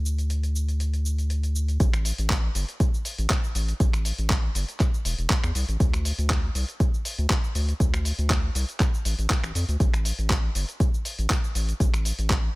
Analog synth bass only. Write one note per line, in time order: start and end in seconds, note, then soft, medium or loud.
0.00 1.78 D2 medium
1.80 2.12 A1 loud
2.19 2.50 A1 medium
2.55 2.65 G1 medium
3.19 3.27 A1 loud
3.55 3.73 A1 medium
3.80 4.12 A1 medium
4.18 4.50 A1 medium
4.55 4.65 G1 medium
5.05 5.15 E1 medium
5.18 5.27 E1 loud
5.43 5.52 E2 loud
5.55 5.65 C2 medium
5.69 5.77 A1 medium
5.80 6.12 D2 loud
6.18 6.50 D2 medium
6.55 6.65 C2 medium
7.18 7.27 D2 loud
7.55 7.73 D2 medium
7.80 8.12 D2 loud
8.19 8.50 D2 medium
8.55 8.65 C2 medium
9.05 9.15 A1 medium
9.19 9.27 A1 loud
9.44 9.52 A1 loud
9.55 9.65 F2 medium
9.68 9.77 D2 medium
9.80 10.12 A1 loud
10.19 10.50 A1 loud
10.55 10.65 G1 medium
11.19 11.27 A1 loud
11.55 11.73 A1 medium
11.80 12.12 A1 loud
12.19 12.50 A1 loud